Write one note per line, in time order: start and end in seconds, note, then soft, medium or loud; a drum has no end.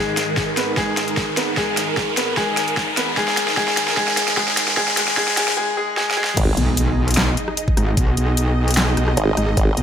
0.00 5.53 G#2 medium
0.00 5.53 D#3 medium
0.00 0.50 G#3 medium
0.00 5.53 D#4 medium
0.00 0.50 G#4 medium
0.00 5.53 G#4 medium
0.00 5.55 A#4 medium
0.00 riser medium
0.17 snare medium
0.17 closed hi-hat medium
0.37 kick loud
0.37 snare medium
0.57 0.76 B3 medium
0.57 0.76 B4 medium
0.57 snare medium
0.57 closed hi-hat medium
0.77 1.30 G#3 medium
0.77 1.30 G#4 medium
0.77 kick loud
0.77 snare medium
0.97 snare medium
0.97 closed hi-hat medium
1.08 closed hi-hat soft
1.17 kick loud
1.17 snare medium
1.37 1.56 B3 medium
1.37 1.56 B4 medium
1.37 snare medium
1.37 closed hi-hat medium
1.57 2.10 G#3 medium
1.57 2.10 G#4 medium
1.57 kick medium
1.57 snare medium
1.77 snare medium
1.77 closed hi-hat medium
1.97 kick medium
1.97 snare medium
2.17 2.36 B3 medium
2.17 2.36 B4 medium
2.17 snare medium
2.17 closed hi-hat medium
2.37 2.90 G#3 medium
2.37 2.90 G#4 loud
2.37 kick loud
2.37 snare medium
2.57 snare medium
2.57 closed hi-hat medium
2.68 closed hi-hat soft
2.77 kick loud
2.77 snare medium
2.97 3.16 B3 medium
2.97 3.16 B4 medium
2.97 snare medium
2.97 closed hi-hat medium
3.17 3.56 G#3 medium
3.17 3.56 G#4 loud
3.17 kick loud
3.17 snare medium
3.28 snare medium
3.37 snare loud
3.37 closed hi-hat medium
3.48 snare medium
3.57 3.96 G#3 medium
3.57 3.96 G#4 loud
3.57 kick loud
3.57 snare loud
3.68 snare medium
3.77 snare medium
3.77 closed hi-hat medium
3.88 snare medium
3.97 4.36 G#3 medium
3.97 4.36 G#4 loud
3.97 kick loud
3.97 snare medium
4.08 snare medium
4.17 snare medium
4.17 closed hi-hat medium
4.28 snare medium
4.28 closed hi-hat soft
4.37 4.76 G#3 medium
4.37 4.75 G#4 loud
4.37 kick loud
4.37 snare loud
4.48 snare medium
4.57 snare loud
4.57 closed hi-hat medium
4.68 snare medium
4.77 4.96 G#3 medium
4.77 4.96 G#4 loud
4.77 kick loud
4.77 snare loud
4.88 snare medium
4.97 5.16 G#3 medium
4.97 5.16 G#4 loud
4.97 snare loud
4.97 closed hi-hat medium
5.08 snare medium
5.17 5.36 G#3 medium
5.17 5.36 G#4 loud
5.17 kick loud
5.17 snare loud
5.28 snare medium
5.37 5.56 G#3 medium
5.37 5.56 G#4 loud
5.37 snare loud
5.37 closed hi-hat medium
5.48 snare medium
5.57 5.76 G#3 medium
5.57 5.76 G#4 loud
5.77 5.96 G#3 medium
5.77 5.96 G#4 loud
5.97 6.16 G#3 medium
5.97 6.16 G#4 loud
5.97 snare medium
6.11 snare medium
6.17 6.36 G#3 medium
6.17 6.36 G#4 loud
6.24 snare medium
6.37 6.56 G#1 medium
6.37 9.83 D#4 medium
6.37 9.83 G#4 medium
6.37 9.83 D#5 medium
6.37 kick loud
6.37 closed hi-hat medium
6.37 crash loud
6.37 impact medium
6.57 7.36 B1 loud
6.57 closed hi-hat medium
6.77 closed hi-hat medium
7.08 closed hi-hat medium
7.11 closed hi-hat medium
7.14 snare loud
7.14 clap medium
7.14 closed hi-hat medium
7.17 closed hi-hat medium
7.37 closed hi-hat medium
7.48 cross-stick medium
7.57 closed hi-hat medium
7.68 kick loud
7.77 7.96 G#1 loud
7.77 cross-stick soft
7.77 closed hi-hat medium
7.97 8.16 B1 loud
7.97 kick loud
7.97 closed hi-hat medium
8.17 8.96 B1 medium
8.17 closed hi-hat medium
8.37 closed hi-hat medium
8.68 closed hi-hat soft
8.71 closed hi-hat medium
8.74 snare loud
8.74 clap medium
8.74 closed hi-hat medium
8.77 closed hi-hat medium
8.97 9.16 B1 loud
8.97 cross-stick medium
8.97 closed hi-hat medium
9.08 cross-stick medium
9.17 9.36 G#1 loud
9.17 closed hi-hat medium
9.37 9.56 G#1 loud
9.37 cross-stick soft
9.37 closed hi-hat medium
9.57 9.76 G#1 loud
9.57 kick loud
9.57 closed hi-hat medium
9.77 9.83 B1 medium
9.77 closed hi-hat medium